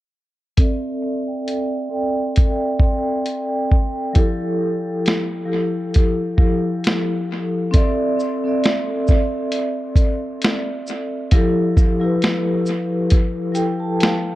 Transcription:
0.57 vibraphone C4 A4 D5, kick, closed hi-hat
0.61 vibraphone E5
1.23 vibraphone C4 A4 D5
1.27 vibraphone G5
1.48 closed hi-hat
1.89 vibraphone C4 A4 D5
1.94 vibraphone G5
2.36 kick, closed hi-hat
2.80 vibraphone C4 A4 D5, kick
2.84 vibraphone G5
3.26 closed hi-hat
3.72 kick
4.13 vibraphone F3 E4 G4, kick, closed hi-hat
4.17 vibraphone A4
5.06 snare, closed hi-hat
5.45 vibraphone F3 E4 G4
5.50 vibraphone A4
5.94 kick, closed hi-hat
6.38 vibraphone F3 E4 G4, kick
6.42 vibraphone A4
6.84 snare, closed hi-hat
7.71 vibraphone C4 A4 D5, kick, closed hi-hat
7.76 vibraphone E5
8.20 shaker
8.44 vibraphone C4 A4 D5
8.48 vibraphone E5
8.64 snare, closed hi-hat
9.07 kick, shaker
9.52 closed hi-hat
9.96 kick, closed hi-hat, shaker
10.42 snare, closed hi-hat
10.87 shaker
11.31 vibraphone F3 E4 G4, kick, closed hi-hat
11.36 vibraphone A4
11.77 kick, shaker
12.00 vibraphone F3 E4 G4
12.04 vibraphone B4
12.22 snare, closed hi-hat
12.66 shaker
13.10 kick, closed hi-hat
13.52 vibraphone F3 E4 G4 G5, closed hi-hat, shaker
13.57 vibraphone A4
13.80 vibraphone A5
14.00 vibraphone F5, snare, closed hi-hat

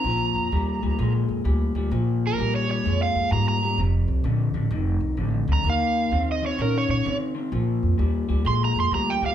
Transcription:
Already playing: electric slide guitar A#5
0.04 upright bass A#1, clean electric guitar A#2 F3
0.35 upright bass F2
0.52 upright bass D#2, clean electric guitar A#2 G3
0.82 upright bass D2, clean electric guitar A#2 G3
0.99 upright bass A#1, clean electric guitar A#2 G#3
1.29 upright bass F2
1.45 upright bass D2, clean electric guitar A#2 G3
1.75 upright bass D2, clean electric guitar A#2 G3
1.91 upright bass A#1, clean electric guitar A#2 F3
2.27 electric slide guitar A#4
2.38 upright bass A#1, clean electric guitar A#2 G3
2.56 electric slide guitar C#5
2.69 clean electric guitar A#2 G3, electric slide guitar C#5
2.85 upright bass F2, clean electric guitar A#2 G#3
3.03 electric slide guitar F5
3.15 upright bass F2
3.31 upright bass G#2, clean electric guitar A#2 G3, electric slide guitar A#5
3.49 electric slide guitar A#5
3.62 clean electric guitar A#2 G3
3.78 upright bass F1, clean electric guitar F2 C3
4.08 upright bass C2
4.24 upright bass A#1, clean electric guitar F2 D3
4.54 upright bass A1, clean electric guitar F2 D3
4.71 upright bass F1, clean electric guitar F2 D#3
5.00 upright bass C2
5.17 upright bass A1, clean electric guitar F2 D3
5.48 upright bass D2, clean electric guitar F2 D3
5.53 electric slide guitar A#5
5.64 upright bass D#2, clean electric guitar D#3 A#3
5.70 electric slide guitar F5
6.11 upright bass D#2, clean electric guitar D#3 C4
6.32 electric slide guitar D#5
6.42 clean electric guitar D#3 C4
6.46 electric slide guitar C#5
6.58 upright bass A#2, clean electric guitar D#3 C#4, electric slide guitar A#4
6.78 electric slide guitar C#5
6.89 upright bass A#2, electric slide guitar C#5
7.05 upright bass C#3, clean electric guitar D#3 C4
7.35 clean electric guitar D#3 C4
7.52 upright bass A#1, clean electric guitar A#2 F3
7.83 upright bass F2
7.98 upright bass D#2, clean electric guitar A#2 G3
8.29 upright bass D2, clean electric guitar A#2 G3
8.45 upright bass A#1, clean electric guitar A#2 G#3, electric slide guitar C6
8.65 electric slide guitar A#5
8.76 upright bass F2
8.80 electric slide guitar C6
8.91 upright bass D2, clean electric guitar A#2 G3, electric slide guitar A#5
9.10 electric slide guitar G5
9.21 upright bass D2, clean electric guitar A#2 G3
9.26 electric slide guitar F5

